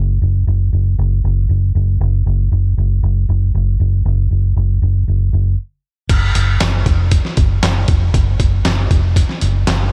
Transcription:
Already playing: fingered electric bass F#1
0.22 fingered electric bass F#1
0.47 fingered electric bass F#1
0.73 fingered electric bass F#1
0.98 fingered electric bass F#1
1.24 fingered electric bass F#1
1.49 fingered electric bass F#1
1.75 fingered electric bass F#1
2.01 fingered electric bass F#1
2.26 fingered electric bass F#1
2.52 fingered electric bass F#1
2.78 fingered electric bass F#1
3.03 fingered electric bass F#1
3.29 fingered electric bass F#1
3.54 fingered electric bass F#1
3.80 fingered electric bass F#1
4.05 fingered electric bass F#1
4.31 fingered electric bass F#1
4.56 fingered electric bass F#1
4.82 fingered electric bass F#1
5.08 fingered electric bass F#1
5.33 fingered electric bass F#1
6.09 fingered electric bass F#1, kick, closed hi-hat, crash
6.35 fingered electric bass F#1, closed hi-hat
6.60 fingered electric bass F#1, snare, clap, closed hi-hat
6.86 fingered electric bass F1, kick, closed hi-hat
7.11 kick, closed hi-hat
7.25 snare
7.37 fingered electric bass F#1, kick, closed hi-hat
7.63 fingered electric bass F#1, snare, clap, closed hi-hat
7.88 fingered electric bass F1, kick, closed hi-hat
8.14 fingered electric bass F#1, kick, closed hi-hat
8.40 fingered electric bass F#1, kick, closed hi-hat
8.65 fingered electric bass F#1, snare, clap, closed hi-hat
8.91 fingered electric bass F1, kick, closed hi-hat
9.16 kick, closed hi-hat
9.29 snare
9.41 fingered electric bass F#1, closed hi-hat
9.67 fingered electric bass F#1, snare, clap, closed hi-hat

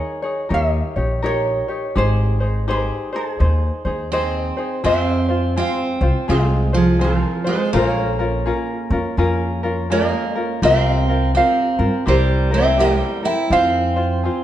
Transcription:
Already playing: ukulele D#4 G#4 A#4 C#5 F5
0.22 ukulele D#4 G#4 C#5
0.49 upright bass D#2, ukulele D#4 G4 A#4 C#5
0.54 ukulele D#5
0.96 upright bass A#1, ukulele D#4 G4 C#5
1.22 ukulele D#4 G4 A#4 C#5
1.68 ukulele D#4 G4 C#5
1.95 upright bass G#1, ukulele D#4 G4 G#4 C5
2.40 ukulele D#4 G#4 C5
2.68 ukulele D#4 G4 G#4 A#4 C5
3.13 ukulele D#4 G#4 C5
3.39 upright bass D#2, ukulele D#4 G#4 C5
3.85 upright bass D#2, ukulele D#4 G#4 C5
4.12 steel-string acoustic guitar C4, ukulele D#4 G#4 C5 D#5
4.57 ukulele D#4 G#4 C5
4.84 upright bass F2, ukulele C4 F4 G#4 C5 F5, steel-string acoustic guitar C4
5.29 ukulele C4 F4 C5
5.56 ukulele C4 F4 G#4 C5 F5, steel-string acoustic guitar C4
6.01 upright bass C2, ukulele C4 F4 C5
6.28 upright bass C2, steel-string acoustic guitar G#3, ukulele C4 F4 G#4 C5
6.73 steel-string acoustic guitar F3, ukulele C4 F4 C5
6.77 ukulele G#4
6.99 steel-string acoustic guitar F3, ukulele C4 F4 G#4 C5
7.04 ukulele F4 A#4
7.44 steel-string acoustic guitar G#3, ukulele C4 F4 C5
7.49 ukulele G#4 C5
7.73 upright bass A#1, steel-string acoustic guitar A#3, ukulele C#4 F4 G#4 A#4 C5
7.87 ukulele C#5
8.19 ukulele C#4 F4 A#4
8.46 ukulele C#4 F4 G#4 A#4
8.90 upright bass F2, ukulele C#4 F4 A#4
9.17 upright bass F2, ukulele C#4 F4 G#4 A#4
9.63 ukulele C#4 F4 A#4
9.90 steel-string acoustic guitar A#3, ukulele C#4 F4 G#4 A#4 D#5
10.35 ukulele C#4 F4 A#4
10.62 upright bass C2, ukulele C4 F4 G4 A#4 C5 F5, steel-string acoustic guitar C4
11.09 ukulele C4 F4 A#4
11.35 steel-string acoustic guitar C4, ukulele C4 F4 G4 A#4 C5 F5
11.79 upright bass G2, ukulele C4 F4 A#4
12.06 upright bass C2, steel-string acoustic guitar G3, ukulele C4 E4 G4 A#4 C5
12.51 ukulele C4 E4 A#4 C5 E5, steel-string acoustic guitar C4
12.78 steel-string acoustic guitar G3, ukulele C4 E4 G4 A#4 C5
13.23 ukulele C4 E4 A#4 E5 G5, steel-string acoustic guitar E4
13.50 upright bass F2, ukulele C4 F4 G#4 C5 F5, steel-string acoustic guitar C4
13.96 ukulele C4 F4 C5
14.24 ukulele C4 F4 G#4 C5

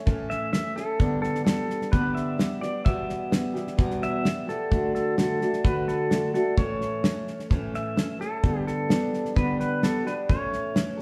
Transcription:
0.06 steel-string acoustic guitar A2 E3 A3 C#4 A4, kick, snare
0.30 pedal steel guitar E5, snare
0.52 steel-string acoustic guitar E3 A3 C#4 A4, pedal steel guitar E5, snare, hi-hat pedal
0.76 steel-string acoustic guitar A3 C#4 A4, pedal steel guitar A4, snare
0.99 steel-string acoustic guitar G2 D3 G3 B3 D4 G4, kick, snare
1.22 pedal steel guitar A4, snare
1.35 snare
1.44 steel-string acoustic guitar G3 B3 D4 G4, pedal steel guitar A4, snare, hi-hat pedal
1.70 snare
1.82 snare
1.92 steel-string acoustic guitar G2 D3 G3 B3 D4 G4, pedal steel guitar B4, kick, snare
2.15 pedal steel guitar E5, snare
2.37 steel-string acoustic guitar G3 B3 D4 G4, snare, hi-hat pedal
2.61 steel-string acoustic guitar G3 B3 D4 G4, pedal steel guitar D5, snare
2.84 steel-string acoustic guitar E2 B2 E3 G3 B3 G4, pedal steel guitar E5, kick, snare
3.09 snare
3.30 steel-string acoustic guitar E3 G3 B3 G4, snare, hi-hat pedal
3.54 steel-string acoustic guitar E3 G3 B3 G4, snare
3.67 snare
3.77 steel-string acoustic guitar E2 B2 E3 G3 B3 G4, kick, snare
3.90 snare
4.02 pedal steel guitar E5, snare
4.24 steel-string acoustic guitar E3 G3 B3 G4, snare, hi-hat pedal
4.47 steel-string acoustic guitar E3 G3 B3 G4, pedal steel guitar A4, snare
4.71 steel-string acoustic guitar D3 A3 D4 F#4, kick, snare
4.95 pedal steel guitar A4, snare
5.17 steel-string acoustic guitar D3 A3 D4 F#4, pedal steel guitar A4, snare, hi-hat pedal
5.40 steel-string acoustic guitar A3 D4 F#4, snare
5.53 snare
5.64 steel-string acoustic guitar D3 A3 D4 F#4, pedal steel guitar B4, kick, snare
5.88 pedal steel guitar A4, snare
6.10 steel-string acoustic guitar D3 A3 D4 F#4, snare, hi-hat pedal
6.33 steel-string acoustic guitar A3 D4 F#4, pedal steel guitar A4, snare
6.57 steel-string acoustic guitar A2 E3 A3 C#4 A4, pedal steel guitar C#5, kick, snare
6.81 snare
7.03 steel-string acoustic guitar E3 A3 C#4 A4, snare, hi-hat pedal
7.27 snare
7.39 snare
7.50 steel-string acoustic guitar A2 E3 A3 C#4 A4, kick, snare
7.74 pedal steel guitar E5, snare
7.96 steel-string acoustic guitar E3 A3 C#4 A4, snare, hi-hat pedal
8.20 steel-string acoustic guitar A3 C#4 A4, pedal steel guitar A4, snare
8.43 steel-string acoustic guitar G2 D3 G3 B3 D4 G4, kick, snare
8.67 pedal steel guitar A4, snare
8.89 steel-string acoustic guitar G3 B3 D4 G4, snare, hi-hat pedal
9.14 snare
9.25 snare
9.35 steel-string acoustic guitar G2 D3 G3 B3 D4 G4, pedal steel guitar B4, kick, snare
9.60 pedal steel guitar B4, snare
9.82 steel-string acoustic guitar G3 B3 D4 G4, pedal steel guitar A4, snare, hi-hat pedal
10.05 steel-string acoustic guitar G3 B3 D4 G4, pedal steel guitar B4, snare
10.29 steel-string acoustic guitar A2 E3 A3 C#4 A4, pedal steel guitar C#5, kick, snare
10.53 snare
10.74 steel-string acoustic guitar E3 A3 C#4 A4, snare, hi-hat pedal
10.97 steel-string acoustic guitar A4

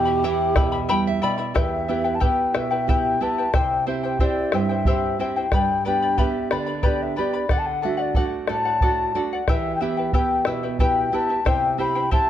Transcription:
Already playing: nylon-string guitar E2 B2, pan flute G4, quena G5
0.05 charango E4 E5 B5
0.24 nylon-string guitar E3, charango E4 G4 E5 G5 B5, bombo rim
0.56 nylon-string guitar B2, charango E4 E5 G5 B5, bombo rim, bombo low
0.72 charango E4 E5 B5
0.89 nylon-string guitar G3 G5, charango E4 G4 E5 G5 B5
1.07 nylon-string guitar E5
1.22 nylon-string guitar B2 D5, charango E4 E5 G5 B5
1.38 charango E4 E5 B5, bombo rim
1.54 nylon-string guitar E2, charango E4 G4 B4 E5 G5, quena E5, bombo rim, bombo low
1.88 nylon-string guitar B3 E4 G4, charango E4 B4 E5 G5
2.04 charango E4 B4 G5
2.15 quena A5
2.20 nylon-string guitar B3 E4 G4, charango E4 G4 B4 E5 G5, quena G5, bombo low
2.54 nylon-string guitar B2, charango E4 B4 E5 G5, quena E5, bombo rim
2.71 charango E4 B4 G5
2.87 nylon-string guitar B3 E4 G4, charango E4 G4 B4 E5 G5, quena G5, bombo low
3.20 nylon-string guitar B3 E4 G4, charango E4 B4 E5 G5, quena A5
3.38 charango E4 B4 G5
3.53 nylon-string guitar C3, charango E4 G4 C5 E5 G5, quena G5, bombo rim, bombo low
3.87 nylon-string guitar C4 E4 G4, charango E4 C5 E5 G5, quena E5
4.04 charango E4 C5 G5
4.19 nylon-string guitar C4 E4 G4, charango E4 G4 C5 E5 G5, quena D5, bombo low
4.52 nylon-string guitar G2, charango E4 C5 E5 G5, quena E5, bombo rim
4.69 charango E4 C5 G5
4.85 nylon-string guitar C4 E4 G4, charango E4 G4 C5 E5 G5, bombo low
5.19 nylon-string guitar C4 E4 G4, charango E4 C5 E5 G5
5.36 charango E4 C5 G5
5.52 nylon-string guitar G2, charango G4 B4 D5 G5 B5, quena G5, bombo rim, bombo low
5.85 nylon-string guitar B3 D4 G4, charango B4 D5 G5 B5, quena G5
6.02 charango B4 D5 B5
6.18 nylon-string guitar B3 D4 G4, charango G4 B4 D5 G5 B5, quena E5, bombo low
6.51 nylon-string guitar D3, charango B4 D5 G5 B5, quena D5, bombo rim
6.66 charango B4 D5 B5
6.83 nylon-string guitar B3 D4 G4, charango G4 B4 D5 G5 B5, quena D5, bombo low
7.02 quena E5
7.16 nylon-string guitar B3 D4 G4, charango B4 D5 G5 B5, quena D5
7.33 charango B4 D5 B5
7.49 nylon-string guitar D3, charango A4 D5 F#5, quena F#5, bombo rim, bombo low
7.58 quena A5
7.66 quena F#5
7.82 nylon-string guitar A3 D4 F#4, charango A4 D5 F#5, quena E5
7.97 charango D5 F#5, bombo rim
8.02 quena D5
8.14 nylon-string guitar A3 D4 F#4, charango A4 D5 F#5, quena F#5, bombo low
8.48 nylon-string guitar A2, charango A4 D5 F#5, quena A5, bombo rim
8.65 charango D5 F#5, bombo rim
8.81 nylon-string guitar A3 D4 F#4, charango A4 D5 F#5, bombo low
9.15 nylon-string guitar A3 D4 F#4, charango A4 D5 F#5
9.33 charango D5 F#5
9.48 nylon-string guitar E3, charango E4 G4 B4 E5 G5, quena E5, bombo rim, bombo low
9.75 quena G5
9.81 nylon-string guitar B3 E4 G4, charango E4 B4 E5 G5, quena E5
9.97 charango E4 B4 G5
10.13 nylon-string guitar B3 E4 G4, charango E4 G4 B4 E5 G5, quena G5, bombo low
10.45 nylon-string guitar B2, charango E4 B4 E5 G5, quena E5, bombo rim
10.63 charango E4 B4 G5
10.79 nylon-string guitar B3 E4 G4, charango E4 G4 B4 E5 G5, quena G5, bombo low
11.12 nylon-string guitar B3 E4 G4, charango E4 B4 E5 G5, quena A5
11.29 charango E4 B4 G5
11.45 nylon-string guitar C3, charango E4 G4 C5 E5 G5, quena G5, bombo rim, bombo low
11.78 nylon-string guitar C4 E4 G4, charango E4 C5 E5 G5, quena B5
11.95 charango E4 C5 G5
12.11 nylon-string guitar C4 E4 G4, charango E4 G4 C5 E5 G5, quena A5, bombo low

